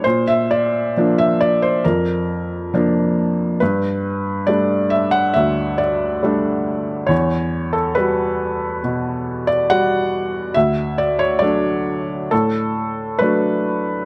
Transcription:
X:1
M:4/4
L:1/16
Q:1/4=68
K:D
V:1 name="Felt piano"
=c e d3 e d c _B4 z4 | B4 d2 e f e2 d6 | c3 A B6- B d f4 | e2 d c d4 A4 B4 |]
V:2 name="Felt piano" clef=bass
_B,,4 [=F,_B,D]4 =F,,4 [F,B,D]4 | G,,4 [G,A,D]4 D,,4 [G,A,D]4 | E,,4 [G,F]4 B,,4 [G,F]4 | D,,4 [F,A,D]4 A,,4 [F,A,D]4 |]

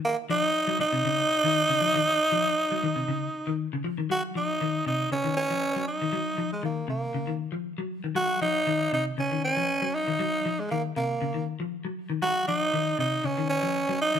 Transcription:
X:1
M:4/4
L:1/16
Q:1/4=118
K:Ebdor
V:1 name="Tenor saxophone"
B,2 E4 E8- E2- | E12 z4 | G2 E4 E2 D2 D4 E2- | E3 A, B,2 B,4 z6 |
G2 E4 E2 D2 D4 E2- | E3 A, B,2 B,4 z6 | G2 E4 E2 D2 D4 E2 |]
V:2 name="Clean electric guitar" clef=bass
z2 F,2 z G, z C, D,2 z E,2 D, F, E, | z2 F,2 z G, E, C, D,2 z E,2 D, F, E, | G,2 F,2 E,2 C,2 D, E,2 F,2 G,2 E, | G,2 F,2 E,2 C,2 D, E,2 F,2 G,2 E, |
G,2 F,2 E,2 C,2 D, E,2 F,2 G,2 E, | G,2 F,2 E,2 C,2 D, E,2 F,2 G,2 E, | G,2 F,2 E,2 C,2 D, E,2 F,2 G,2 E, |]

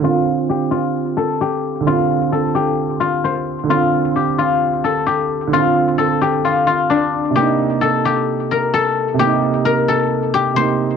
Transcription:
X:1
M:4/4
L:1/8
Q:1/4=131
K:Dphr
V:1 name="Guzheng"
F2 G F2 A G2 | F2 A G2 F c2 | F2 G F2 A G2 | F2 A G F F D2 |
G2 A G2 B A2 | G2 B A2 G c2 |]
V:2 name="Grand piano"
[D,CF]8 | [D,CF]8 | [D,CF]8 | [D,CF]8 |
[C,B,E]8 | [C,B,E]6 [C,B,E]2 |]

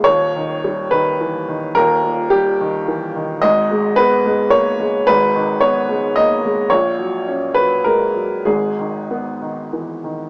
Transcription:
X:1
M:3/4
L:1/8
Q:1/4=108
K:G#m
V:1 name="Upright piano"
c3 B3 | A2 =G4 | d2 B2 c2 | B2 c2 d2 |
c3 B A2 | G4- G z |]
V:2 name="Upright piano" clef=bass
[D,,,D,,] D, =G, D, E, D, | [D,,,D,,] A,, =G, D, E, D, | [G,,,G,,] G, B, G, A, G, | [G,,,G,,] D, B, G, A, G, |
[A,,,A,,] F, C F, G, F, | [G,,,G,,] D, B, D, E, D, |]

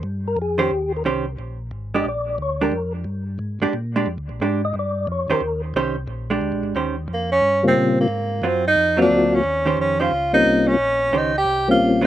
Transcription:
X:1
M:4/4
L:1/8
Q:"Swing" 1/4=179
K:Eb
V:1 name="Tonewheel organ"
z B A G2 B z2 | z3 e d2 _d B- | B z6 z | z3 e d2 _d B- |
B z6 z | z4 z [_D,G,B,CF]3 | z4 z [_G,B,CF_G]3 | z4 z [G,B,C_DF]3 |
z4 z [G,B,C_DF]3 |]
V:2 name="Hollow-body jazz guitar"
z3 [E,_DGc] z2 [E,DGc] z | z3 [A,DG] z3 [A,DG] | z4 z [A,DG] z [A,DG] | z2 [A,DG] z4 [E,_DGc] |
z2 [E,_DGc] z2 [A,=DG]3 | [E,_DGc] z6 z | z2 [_G,CF] z2 [G,CF]3 | z [E,_DGc]2 [E,DGc] z4 |
z2 [E,_DGc] z4 [_G,CF] |]
V:3 name="Tenor saxophone"
z8 | z8 | z8 | z8 |
z8 | z2 B, _D2 C2 B,- | B,2 C E2 D2 _D- | _D2 D F2 E2 D- |
_D2 E G2 F2 z |]
V:4 name="Tonewheel organ" clef=bass
G,,2 F,,2 E,,2 C,,2 | B,,,2 A,,,2 B,,,2 D,,2 | F,,2 G,,2 A,, A,, B,,2 | (3F,, D,, B,,, A,,2 G,,2 F,, F,, |
E,,2 C,,2 B,,,2 (3D,, B,,, A,,, | E,,2 F,,2 G,,2 B,,2 | A,,2 _G,,2 F,,2 D,,2 | E,,2 F,,2 _D,,2 C,,2 |
B,,,2 _D,,2 C,,2 B,,,2 |]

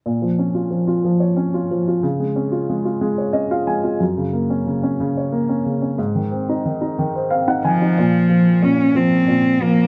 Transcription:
X:1
M:6/8
L:1/16
Q:3/8=61
K:Bbm
V:1 name="Upright piano"
z12 | z8 e f a2 | z12 | z8 f g a2 |
z12 |]
V:2 name="Upright piano"
B,, F, D F F, F F, d D F F, F | D, A, D F A, F A, d D F A, F | G,, D, B, D D, D D, d B, D D, D | A,, E, C E E, E E, c C E E, E |
B,,2 F,2 B,,2 F,2 B,,2 F,2 |]
V:3 name="Cello"
z12 | z12 | z12 | z8 z2 F,2- |
F,4 D2 C4 B,2 |]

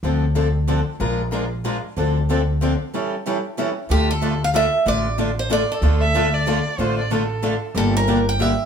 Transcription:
X:1
M:3/4
L:1/16
Q:"Swing" 1/4=187
K:Dm
V:1 name="Violin"
z12 | z12 | z12 | z12 |
z12 | z12 | z2 e4 d6 | c2 d2 A6- A z |
z12 |]
V:2 name="Steel-string acoustic guitar"
z12 | z12 | z12 | z12 |
G2 A4 f2 e4 | d4 z2 c2 d2 A2- | A6 z6 | z12 |
A2 B4 g2 e4 |]
V:3 name="Steel-string acoustic guitar"
[D,F,CDA]2 z2 [D,F,CDA]2 z2 [D,F,CDA]2 z2 | [F,_A,DFB]2 z2 [F,A,DFB]2 z2 [F,A,DFB]2 z2 | [D,F,CDA]2 z2 [D,F,CDA]2 z2 [D,F,CDA]2 z2 | [E,G,^CEA]2 z2 [E,G,CEA]2 z2 [E,G,CEA]2 z2 |
[D,A,DFA]2 z2 [D,A,DFA]2 z2 [D,A,DFA]2 z2 | [D,A,DFA]2 z2 [D,A,DFA]2 z2 [D,A,DFA]2 z2 | [D,A,DFA]2 z2 [D,A,DFA]2 z2 [D,A,DFA]2 z2 | [D,A,DFA]2 z2 [D,A,DFA]2 z2 [D,A,DFA]2 z2 |
[D,G,B,DG]2 z2 [D,G,B,DG]2 z2 [D,G,B,DG]2 z2 |]
V:4 name="Steel-string acoustic guitar"
[D,F,CDA]2 z2 [D,F,CDA]2 z2 [D,F,CDA]2 z2 | [F,_A,DFB]2 z2 [F,A,DFB]2 z2 [F,A,DFB]2 z2 | [D,F,CDA]2 z2 [D,F,CDA]2 z2 [D,F,CDA]2 z2 | [E,G,^CEA]2 z2 [E,G,CEA]2 z2 [E,G,CEA]2 z2 |
[D,A,DFA]2 z2 [D,A,DFA]2 z2 [D,A,DFA]2 z2 | [D,A,DFA]2 z2 [D,A,DFA]2 z2 [D,A,DFA]2 z2 | [D,A,DFA]2 z2 [D,A,DFA]2 z2 [D,A,DFA]2 z2 | [D,A,DFA]2 z2 [D,A,DFA]2 z2 [D,A,DFA]2 z2 |
[D,G,B,DG]2 z2 [D,G,B,DG]2 z2 [D,G,B,DG]2 z2 |]
V:5 name="Upright bass" clef=bass
D,,12 | B,,,12 | D,,12 | z12 |
D,,12 | A,,,12 | D,,12 | A,,,12 |
G,,,12 |]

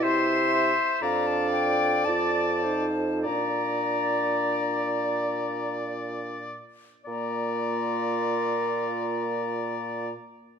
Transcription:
X:1
M:3/4
L:1/16
Q:1/4=50
K:Bb
V:1 name="Flute"
c'4 b a g2 a4 | b8 z4 | b12 |]
V:2 name="Clarinet"
=e4 f4 d2 c2 | d8- d2 z2 | F12 |]
V:3 name="Oboe"
c2 c2 d6 z2 | d8- d2 z2 | d12 |]
V:4 name="French horn"
=E2 z2 D4 F2 _E2 | D8- D2 z2 | B,12 |]
V:5 name="Bassoon" clef=bass
C,2 z2 F,,4 F,,4 | B,,8- B,,2 z2 | B,,12 |]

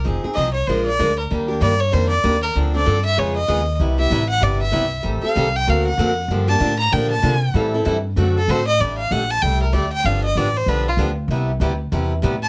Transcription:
X:1
M:4/4
L:1/8
Q:"Swing" 1/4=192
K:Gm
V:1 name="Violin"
z2 e ^c =c d2 B | z2 d ^c =c d2 B | z d2 =e ^c ^d3 | z =e2 ^f d e3 |
z f2 g ^e ^f3 | z a2 b g a3 | z4 z A c e | d f ^f a g B d g |
f e d c =B F z2 | z6 z a |]
V:2 name="Steel-string acoustic guitar"
[F,CE_A] [CEA] [F,CEA] z [F,_A,DFB] z [F,A,DFB] z | [E,G,B,DG] [B,DG] [E,G,B,DG] z [E,G,B,DG] z [E,G,B,DG] z | [D,F,CDA] [CDA] [D,F,CDA] z [^C,^G,=B,^E^G] z [C,G,B,EG] z | [C,G,=B,=EG] [B,EG] [C,G,B,EG] z [C,G,B,EG] z [C,G,B,EG] z |
[E,G,CGA] [CGA] [E,G,CGA] z [D,^A,C^F^A] z [D,A,CFA] z | [D,F,B,DG] [B,DG] [D,F,B,DG] z [D,F,B,DG] z [D,F,B,DG] z | [=E,G,C=EA] [CEA] [E,G,CEA] z [D,A,C^FA] z [D,A,CFA] z | [G,A,DG] z [G,A,DG] z [G,A,DG] z [G,A,DG] z |
[D,F,=B,DG] z [D,F,B,DG] z [D,F,B,DG] z [D,F,B,DG] z | [C,G,=B,=EG] z [C,G,B,EG] z [C,G,B,EG] z [C,G,B,EG] z |]
V:3 name="Upright bass" clef=bass
F,,, z C,,2 B,,,2 D,,2 | E,,2 G,,2 F,,2 E,,2 | D,,2 G,,2 ^E,,2 ^D,,2 | C,,2 A,,,2 G,,,2 C,,2 |
A,,, z C,,2 D,,2 ^E,,2 | G,,2 A,,2 B,,2 C,2 | A,,2 G,,2 ^F,,2 A,,2 | A,,,2 B,,,2 C,,2 D,,2 |
G,,,2 A,,,2 =B,,,2 D,,2 | C,,2 D,,2 =E,,2 A,,2 |]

